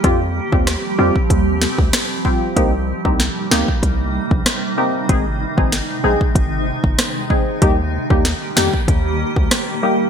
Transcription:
0.00 0.41 F2 loud
0.00 5.05 G3 medium
0.00 0.19 G3 loud
0.00 0.19 C4 medium
0.00 2.53 G4 medium
0.00 kick loud
0.00 closed hi-hat medium
0.04 2.54 F3 medium
0.04 2.54 C4 medium
0.04 0.19 F4 medium
0.04 0.19 G4 loud
0.52 0.76 D#2 medium
0.52 0.66 G3 medium
0.52 0.66 C4 medium
0.52 0.66 F4 medium
0.52 0.66 G4 medium
0.52 kick loud
0.67 cross-stick medium
0.67 snare medium
0.67 closed hi-hat medium
0.98 1.11 F2 loud
0.98 1.14 G3 medium
0.98 1.14 C4 medium
0.98 1.14 F4 medium
0.98 1.14 G4 medium
1.16 kick medium
1.30 1.67 D#2 medium
1.30 kick loud
1.30 closed hi-hat medium
1.62 snare medium
1.78 1.90 D2 medium
1.78 kick medium
1.93 cross-stick medium
1.93 snare loud
1.93 closed hi-hat medium
2.25 2.54 G3 medium
2.25 2.54 C4 medium
2.25 2.54 F4 medium
2.25 2.54 G4 medium
2.25 kick medium
2.56 2.93 C2 loud
2.56 7.58 C3 medium
2.56 2.72 A#3 loud
2.56 5.07 A#3 medium
2.56 2.72 C4 medium
2.56 7.58 D#4 medium
2.56 2.72 D#4 medium
2.56 2.72 G4 loud
2.56 kick loud
2.56 closed hi-hat medium
3.05 3.29 C2 medium
3.05 3.18 A#3 medium
3.05 3.18 C4 medium
3.05 3.18 D#4 medium
3.05 3.19 G4 medium
3.05 kick medium
3.20 snare medium
3.20 closed hi-hat medium
3.51 3.64 D2 medium
3.51 3.66 A#3 medium
3.51 3.66 C4 medium
3.51 3.67 D#4 medium
3.51 3.67 G4 medium
3.51 snare loud
3.68 kick medium
3.83 4.19 C2 medium
3.83 kick loud
3.83 closed hi-hat medium
4.31 4.42 A#1 medium
4.31 kick medium
4.46 cross-stick medium
4.46 snare loud
4.46 closed hi-hat medium
4.77 5.07 A#3 medium
4.77 5.07 C4 medium
4.77 5.07 D#4 medium
4.77 5.07 G4 medium
5.09 5.46 G#1 loud
5.09 10.10 D#3 medium
5.09 5.24 G#3 medium
5.09 7.59 G#3 medium
5.09 5.24 C4 medium
5.09 5.24 D#4 medium
5.09 5.25 G#4 loud
5.09 kick loud
5.09 closed hi-hat medium
5.57 5.82 G#1 medium
5.57 5.71 G#3 medium
5.57 5.71 C4 medium
5.57 5.71 D#4 medium
5.57 5.71 G#4 medium
5.57 kick loud
5.72 snare medium
5.72 closed hi-hat medium
6.04 6.17 A#1 medium
6.04 6.19 G#3 medium
6.04 6.19 C4 medium
6.04 6.19 D#4 medium
6.04 6.19 G#4 medium
6.21 kick medium
6.35 6.72 G#1 medium
6.35 kick loud
6.35 closed hi-hat medium
6.84 6.95 G1 medium
6.84 kick medium
6.99 cross-stick medium
6.99 snare loud
6.99 closed hi-hat medium
7.30 7.59 G#3 medium
7.30 7.59 C4 medium
7.30 7.60 D#4 medium
7.30 7.60 G#4 medium
7.30 kick medium
7.61 7.98 D#2 loud
7.61 7.77 G3 loud
7.61 10.10 G3 medium
7.61 7.77 A#3 medium
7.61 10.10 A#3 medium
7.61 7.77 D#4 medium
7.61 10.10 G4 medium
7.61 7.77 G4 loud
7.61 kick loud
7.61 closed hi-hat medium
8.10 8.34 D#2 loud
8.10 8.23 G3 medium
8.10 8.24 A#3 medium
8.10 8.24 D#4 medium
8.10 8.24 G4 medium
8.10 kick loud
8.25 snare medium
8.25 closed hi-hat medium
8.56 8.69 F2 loud
8.56 8.72 G3 medium
8.56 8.72 A#3 medium
8.56 8.72 D#4 medium
8.56 8.72 G4 medium
8.56 snare loud
8.74 kick medium
8.88 9.25 D#2 loud
8.88 kick loud
8.88 closed hi-hat medium
9.36 9.48 D2 medium
9.36 kick medium
9.51 cross-stick loud
9.51 snare loud
9.51 closed hi-hat medium
9.83 10.10 G3 medium
9.83 10.10 A#3 medium
9.83 10.10 D#4 medium
9.83 10.10 G4 medium

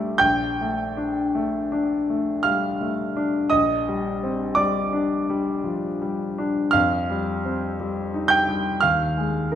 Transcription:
0.00 0.18 A#1 medium
0.00 0.24 G3 soft
0.00 0.24 A3 soft
0.00 0.24 C4 soft
0.00 0.24 D4 soft
0.00 0.16 D5 medium
0.00 0.20 D6 medium
0.18 3.47 A#1 soft
0.18 2.41 G5 medium
0.18 2.45 G6 medium
0.61 1.21 A3 soft
0.97 1.57 D4 soft
1.35 1.95 A3 soft
1.72 2.31 D4 soft
2.10 2.67 A3 soft
2.43 2.81 G3 soft
2.43 3.47 F5 medium
2.43 3.50 F6 medium
2.81 3.37 A3 soft
3.17 3.52 D4 soft
3.50 6.71 A#1 soft
3.50 4.52 D#5 medium
3.50 4.56 D#6 medium
3.88 4.44 G3 soft
4.23 4.79 C4 soft
4.55 5.14 G3 soft
4.55 5.60 D5 medium
4.55 5.64 D6 medium
4.93 5.50 D4 soft
5.30 5.87 G3 soft
5.64 6.01 F3 soft
6.02 6.61 G3 soft
6.38 6.75 D4 soft
6.71 8.79 F2 soft
6.71 8.27 F5 medium
6.71 8.30 F6 medium
7.10 7.66 G3 soft
7.45 8.01 C4 soft
7.80 8.35 G3 soft
8.14 8.69 D#4 soft
8.28 8.79 G5 medium
8.28 8.81 G6 medium
8.49 8.83 G3 soft
8.81 9.55 D#2 soft
8.81 9.55 F5 medium
8.81 9.55 F6 medium
9.18 9.55 G#3 soft
9.52 9.55 D#4 soft
9.52 9.55 A#4 soft

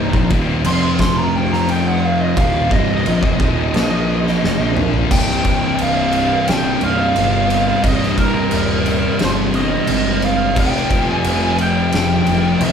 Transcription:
0.00 0.10 C1 medium
0.00 0.12 C2 loud
0.00 0.12 G2 loud
0.00 0.13 C3 loud
0.00 0.62 C4 medium
0.00 0.28 D#4 loud
0.00 0.61 G4 loud
0.00 0.63 D5 medium
0.12 0.30 A#1 loud
0.12 0.29 A#2 loud
0.12 0.30 F3 loud
0.12 kick loud
0.29 0.63 D#1 medium
0.29 0.63 D#2 loud
0.29 0.64 A#2 loud
0.29 0.64 D#3 loud
0.29 kick loud
0.29 crash medium
0.64 2.33 F1 medium
0.64 2.35 F2 medium
0.64 2.36 C3 loud
0.64 2.36 F3 loud
0.64 2.35 F4 medium
0.64 2.34 C5 medium
0.64 2.34 G5 loud
0.64 0.83 C6 medium
0.64 crash loud
0.99 1.16 C6 loud
0.99 kick loud
0.99 snare loud
0.99 crash medium
1.18 1.36 A#5 loud
1.36 1.52 G5 medium
1.53 1.70 A#5 medium
1.53 snare soft
1.68 1.87 G5 medium
1.68 crash medium
1.87 2.05 F#5 medium
2.05 2.20 F5 medium
2.20 2.36 D#5 loud
2.35 2.69 D#1 medium
2.35 2.69 D#2 medium
2.35 2.70 A#2 loud
2.35 2.70 D#3 loud
2.35 3.72 C4 medium
2.35 3.72 G4 medium
2.35 3.73 D#5 medium
2.35 2.71 F5 loud
2.35 kick loud
2.35 crash medium
2.70 3.03 C1 medium
2.70 3.03 C2 loud
2.70 3.04 G2 medium
2.70 3.04 C3 loud
2.70 4.73 D#5 loud
2.70 kick loud
3.04 3.22 A#1 loud
3.04 3.20 A#2 loud
3.04 3.21 F3 loud
3.04 crash medium
3.20 3.39 F1 loud
3.20 3.37 F2 loud
3.20 3.38 C3 loud
3.20 kick loud
3.38 3.72 D#1 loud
3.38 3.72 D#2 medium
3.38 3.72 A#2 loud
3.38 3.73 D#3 loud
3.38 kick loud
3.74 4.38 A#1 loud
3.74 4.41 A#2 loud
3.74 4.41 F3 medium
3.74 4.42 A#3 loud
3.74 4.42 A#3 medium
3.74 4.42 F4 medium
3.74 4.42 C5 medium
3.74 snare loud
3.74 crash medium
4.27 snare soft
4.42 4.59 F1 loud
4.42 4.58 F2 medium
4.42 4.59 C3 loud
4.42 5.10 C4 medium
4.42 5.10 G4 medium
4.42 5.10 D#5 medium
4.42 snare medium
4.59 5.07 A#1 medium
4.59 5.08 A#2 loud
4.59 5.09 F3 loud
4.59 5.10 A#3 loud
4.77 mid tom medium
4.94 floor tom medium
5.08 5.65 C1 medium
5.08 6.78 C2 loud
5.08 6.79 G2 medium
5.08 6.79 C3 loud
5.08 12.72 G3 medium
5.08 10.53 C4 medium
5.08 10.53 D#5 medium
5.08 5.81 G5 loud
5.08 kick loud
5.08 crash loud
5.30 snare soft
5.44 kick medium
5.44 crash medium
5.78 6.33 C1 medium
5.78 6.45 F5 loud
5.78 crash medium
6.12 crash medium
6.48 6.75 C1 loud
6.48 6.83 G5 loud
6.48 snare loud
6.48 crash medium
6.80 7.09 C1 medium
6.80 7.14 G2 medium
6.80 7.13 C3 medium
6.80 7.81 F5 loud
6.80 crash medium
6.85 7.14 C2 medium
7.15 7.70 G1 loud
7.15 7.82 C2 medium
7.15 7.82 G2 medium
7.15 7.84 C3 medium
7.15 crash medium
7.50 crash medium
7.83 8.38 C1 medium
7.83 9.52 C2 loud
7.83 9.53 G2 loud
7.83 9.50 C3 loud
7.83 8.15 D#5 loud
7.83 kick loud
7.83 crash medium
8.03 snare soft
8.18 9.24 A#4 loud
8.18 kick medium
8.18 crash medium
8.51 9.07 D#1 medium
8.51 crash medium
8.86 crash medium
9.19 9.75 G1 medium
9.19 9.30 C5 loud
9.19 snare loud
9.19 crash medium
9.52 9.86 G2 medium
9.52 9.85 C3 loud
9.52 10.19 D#5 loud
9.52 crash medium
9.56 9.84 C2 medium
9.86 10.56 G#1 loud
9.86 10.53 C2 medium
9.86 10.54 G2 medium
9.86 crash medium
9.90 10.55 C3 medium
10.22 10.58 F5 loud
10.22 crash medium
10.54 11.10 F1 loud
10.54 12.24 F2 loud
10.54 12.25 C3 loud
10.54 12.72 F3 medium
10.54 12.72 C4 medium
10.54 kick loud
10.54 crash loud
10.58 12.24 F3 loud
10.58 11.08 G5 loud
10.76 snare soft
10.90 kick loud
10.90 crash medium
11.09 11.56 G#5 loud
11.24 11.78 F1 medium
11.24 crash medium
11.58 12.58 G5 loud
11.58 crash medium
11.92 12.20 F1 loud
11.92 snare loud
11.92 crash medium
12.25 12.54 F1 medium
12.25 12.58 F2 medium
12.25 12.59 C3 medium
12.25 12.63 F3 loud
12.25 crash medium
12.59 12.72 C2 loud
12.59 12.72 F2 medium
12.59 12.72 C3 medium
12.59 12.72 F3 medium
12.59 12.72 F5 loud
12.59 crash medium

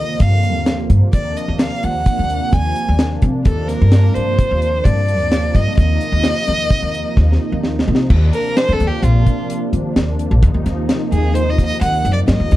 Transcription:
0.00 0.14 D#2 medium
0.00 1.09 C3 medium
0.00 1.10 D3 medium
0.00 1.09 F3 medium
0.00 1.10 A#3 medium
0.00 0.23 D#5 medium
0.20 0.55 G2 medium
0.20 0.67 F5 medium
0.20 kick medium
0.20 closed hi-hat medium
0.43 closed hi-hat medium
0.55 0.84 D#2 medium
0.66 snare medium
0.66 closed hi-hat medium
0.90 1.00 G2 medium
0.90 kick medium
0.90 closed hi-hat medium
1.13 1.32 D#2 medium
1.13 3.41 C3 medium
1.13 3.42 F3 medium
1.13 3.42 A#3 medium
1.13 3.42 D4 medium
1.13 1.38 D5 medium
1.13 kick medium
1.13 closed hi-hat medium
1.36 1.60 D#5 medium
1.36 closed hi-hat medium
1.48 1.67 D#2 medium
1.59 1.85 F5 medium
1.59 snare medium
1.59 closed hi-hat medium
1.83 2.02 D#2 medium
1.83 2.54 F#5 medium
1.83 closed hi-hat soft
2.06 kick medium
2.06 closed hi-hat medium
2.19 2.38 D#2 medium
2.30 closed hi-hat soft
2.52 2.72 D#2 medium
2.52 2.99 G#5 medium
2.52 kick loud
2.52 closed hi-hat medium
2.76 closed hi-hat soft
2.88 3.17 D#2 medium
2.99 snare loud
2.99 closed hi-hat medium
3.22 3.41 C3 medium
3.22 kick medium
3.22 closed hi-hat medium
3.45 3.74 D#2 medium
3.45 5.74 C3 medium
3.45 5.74 F3 medium
3.45 5.75 A#3 medium
3.45 5.75 D4 medium
3.45 3.69 A4 medium
3.45 kick loud
3.45 closed hi-hat medium
3.68 4.16 A#4 medium
3.68 snare soft
3.68 closed hi-hat medium
3.81 4.10 G2 medium
3.92 snare medium
3.92 closed hi-hat medium
4.14 4.35 G2 medium
4.14 4.85 C5 medium
4.14 closed hi-hat medium
4.39 kick medium
4.39 closed hi-hat medium
4.51 4.79 D#2 medium
4.62 closed hi-hat medium
4.84 5.20 G2 medium
4.84 5.57 D5 medium
4.84 kick medium
4.84 closed hi-hat medium
5.08 closed hi-hat medium
5.20 5.49 D#2 medium
5.32 snare medium
5.32 closed hi-hat medium
5.55 5.64 G2 medium
5.55 5.77 D#5 medium
5.55 kick medium
5.55 snare soft
5.55 closed hi-hat medium
5.77 5.97 D#2 medium
5.77 8.06 C3 medium
5.77 8.06 F3 medium
5.77 8.06 A#3 medium
5.77 8.07 D#4 medium
5.77 7.60 D#5 loud
5.77 kick medium
5.77 closed hi-hat medium
6.01 closed hi-hat medium
6.12 6.32 D#2 medium
6.24 snare medium
6.24 closed hi-hat medium
6.47 6.67 D#2 medium
6.47 snare soft
6.47 closed hi-hat soft
6.70 kick medium
6.70 closed hi-hat medium
6.82 7.02 D#2 medium
6.94 closed hi-hat soft
7.17 7.36 D#2 medium
7.17 kick medium
7.17 snare soft
7.32 snare soft
7.52 7.81 D#2 medium
7.63 snare medium
7.79 snare medium
7.88 8.07 C3 medium
7.95 snare medium
8.09 8.29 D#2 loud
8.09 10.38 C3 medium
8.09 10.38 F3 medium
8.09 10.38 A#3 medium
8.09 10.39 D4 medium
8.09 kick medium
8.09 crash medium
8.33 8.58 A#4 medium
8.33 closed hi-hat medium
8.56 8.74 C5 medium
8.56 snare medium
8.56 closed hi-hat medium
8.69 8.78 D#2 medium
8.69 8.89 A4 medium
8.80 8.90 D#2 medium
8.80 closed hi-hat medium
8.87 9.05 G4 medium
9.02 9.22 A#1 medium
9.02 9.50 F4 medium
9.02 closed hi-hat medium
9.26 kick medium
9.26 closed hi-hat medium
9.50 closed hi-hat medium
9.73 9.92 D#3 medium
9.73 closed hi-hat medium
9.96 10.25 D#2 medium
9.96 snare medium
9.96 closed hi-hat medium
10.19 closed hi-hat medium
10.31 10.41 A#1 medium
10.42 10.52 D#2 loud
10.42 12.57 C3 medium
10.42 12.57 F3 medium
10.42 12.57 A#3 medium
10.42 12.57 D#4 medium
10.42 kick loud
10.42 closed hi-hat medium
10.54 10.64 D#2 medium
10.66 10.85 D#2 medium
10.66 snare soft
10.66 closed hi-hat medium
10.89 snare medium
10.89 closed hi-hat medium
11.12 11.69 D#2 medium
11.12 11.36 G#4 medium
11.12 closed hi-hat medium
11.34 11.51 C5 medium
11.34 closed hi-hat medium
11.50 11.65 D#5 medium
11.58 kick medium
11.58 closed hi-hat medium
11.66 11.80 D#5 medium
11.81 12.00 D#2 loud
11.81 12.11 F#5 medium
11.81 closed hi-hat medium
12.05 12.24 F#2 medium
12.05 closed hi-hat medium
12.13 12.20 D5 medium
12.28 12.37 F#2 medium
12.28 12.57 D#5 medium
12.28 snare medium
12.28 closed hi-hat medium
12.40 12.49 D#2 medium
12.51 12.57 D#2 medium
12.51 closed hi-hat medium

